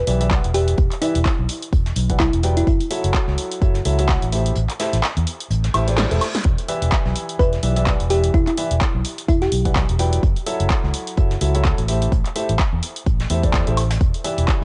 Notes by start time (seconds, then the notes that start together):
0.07 B1 E3 E4 G4 B4 D5 E5, closed hi-hat, open hi-hat
0.21 E3 E4 G4 B4 D5 E5, closed hi-hat
0.31 E3 E4 G4 F#5, kick, snare, clap, closed hi-hat
0.44 E1, closed hi-hat
0.54 E3 E4 G4 B4 D5 E5, closed hi-hat, open hi-hat
0.68 closed hi-hat
0.78 E1, kick, closed hi-hat
0.92 clap, closed hi-hat
1.02 E3 E4 G4 B4 D5 E5, closed hi-hat, open hi-hat
1.15 E1, closed hi-hat
1.25 kick, snare, clap, closed hi-hat
1.39 B1
1.49 closed hi-hat, open hi-hat
1.63 closed hi-hat
1.73 E1, kick, closed hi-hat
1.86 snare, closed hi-hat
1.96 B1, closed hi-hat, open hi-hat
2.10 E3 E4 G4 B4 D5 F#5, kick, closed hi-hat
2.20 E4, kick, snare, clap, closed hi-hat
2.33 E1, closed hi-hat
2.43 F#3 E4 G4 B4 D5 G5, closed hi-hat, open hi-hat
2.57 E4, closed hi-hat
2.67 F#1 E4, kick, closed hi-hat
2.81 closed hi-hat
2.91 F#3 E4 F#4 A4 C#5 E5, closed hi-hat, open hi-hat
3.04 F#1, closed hi-hat
3.14 kick, snare, clap, closed hi-hat
3.28 C#2, snare
3.38 closed hi-hat, open hi-hat
3.51 closed hi-hat
3.62 F#1 F#3 E4 F#4 A4 C#5 E5, kick, closed hi-hat
3.74 snare, closed hi-hat
3.85 C#2 F#3 E4 F#4 A4 C#5 E5, closed hi-hat, open hi-hat
3.99 F#3 E4 F#4 A4 C#5 E5, closed hi-hat
4.09 A3 F#4 A4 F#5, kick, snare, clap, closed hi-hat
4.22 A1, closed hi-hat
4.32 A3 E4 G4 A4 C5 E5, closed hi-hat, open hi-hat
4.46 closed hi-hat
4.55 A1, closed hi-hat
4.70 clap, closed hi-hat
4.79 A3 E4 G4 A4 C5 E5, snare, closed hi-hat, open hi-hat
4.93 A1, snare, closed hi-hat
5.03 snare, clap, closed hi-hat
5.17 E2, closed hi-hat
5.27 closed hi-hat, open hi-hat
5.40 closed hi-hat
5.50 A1, closed hi-hat, reverse cymbal
5.64 snare, closed hi-hat
5.74 A1 A3 E4 G4 A4 C5 E5, closed hi-hat, open hi-hat, high woodblock
5.88 A3 E4 G4 A4 C5 D5, closed hi-hat
5.98 snare, clap, closed hi-hat
6.11 E1 A3 E4 G4 A4 C5 E5, closed hi-hat
6.21 snare, closed hi-hat, open hi-hat, high woodblock
6.35 snare, closed hi-hat
6.45 E1, kick, closed hi-hat
6.59 closed hi-hat
6.69 E3 E4 G4 B4 D5 E5, closed hi-hat, open hi-hat
6.82 E1, closed hi-hat
6.92 kick, snare, clap, closed hi-hat
7.05 B1, snare
7.16 closed hi-hat, open hi-hat
7.29 closed hi-hat
7.39 E1 E3 E4 G4 B4 D5 E5, kick, closed hi-hat
7.53 snare, closed hi-hat
7.63 B1 E3 E4 G4 B4 D5 E5, closed hi-hat, open hi-hat
7.76 E3 E4 G4 B4 D5 E5, closed hi-hat
7.86 E3 E4 G4, kick, snare, clap, closed hi-hat
8.00 E1, closed hi-hat
8.10 E3 E4 G4 B4 D5 E5, closed hi-hat, open hi-hat
8.24 closed hi-hat
8.34 E1 E4, kick, closed hi-hat
8.47 E4, clap, closed hi-hat
8.57 E3 E4 G4 B4 D5 E5, closed hi-hat, open hi-hat
8.71 E1, closed hi-hat
8.80 kick, snare, clap, closed hi-hat
8.95 B1
9.05 closed hi-hat, open hi-hat
9.18 closed hi-hat
9.28 E1 E4, kick, closed hi-hat
9.42 G4, snare, closed hi-hat
9.52 B1, closed hi-hat, open hi-hat
9.65 E3 E4 G4 B4 D5 F#5, kick, closed hi-hat
9.76 kick, snare, clap, closed hi-hat
9.89 E1, closed hi-hat
9.99 F#3 E4 G4 B4 D5 G5, closed hi-hat, open hi-hat
10.12 closed hi-hat
10.23 F#1, kick, closed hi-hat
10.36 closed hi-hat
10.46 F#3 E4 F#4 A4 C#5 E5, closed hi-hat, open hi-hat
10.60 F#1, closed hi-hat
10.70 kick, snare, clap, closed hi-hat
10.84 C#2, snare
10.94 closed hi-hat, open hi-hat
11.07 closed hi-hat
11.17 F#1 F#3 E4 F#4 A4 C#5 E5, kick, closed hi-hat
11.31 snare, closed hi-hat
11.41 C#2 F#3 E4 F#4 A4 C#5 E5, closed hi-hat, open hi-hat
11.55 F#3 E4 F#4 A4 C#5 E5, closed hi-hat
11.64 A3 E4 A4, kick, snare, clap, closed hi-hat
11.78 A1, closed hi-hat
11.88 A3 E4 G4 A4 C5 E5, closed hi-hat, open hi-hat
12.02 closed hi-hat
12.12 kick, closed hi-hat
12.26 clap, closed hi-hat
12.35 A3 E4 G4 A4 C5 E5, closed hi-hat, open hi-hat
12.49 A1, closed hi-hat
12.59 kick, snare, clap, closed hi-hat
12.73 E2
12.83 closed hi-hat, open hi-hat
12.96 closed hi-hat
13.06 A1, kick, closed hi-hat
13.20 snare, closed hi-hat
13.30 E2 A3 E4 G4 A4 C5 E5, closed hi-hat, open hi-hat
13.44 A3 E4 G4 A4 C5 D5, kick, closed hi-hat
13.54 kick, snare, clap, closed hi-hat
13.67 A1 A3 E4 G4 A4 C5 E5, closed hi-hat
13.77 closed hi-hat, open hi-hat, high woodblock
13.91 snare, closed hi-hat
14.01 E1, kick, closed hi-hat
14.14 closed hi-hat
14.24 E3 E4 G4 B4 D5 E5, closed hi-hat, open hi-hat
14.38 E1, closed hi-hat
14.48 kick, snare, clap, closed hi-hat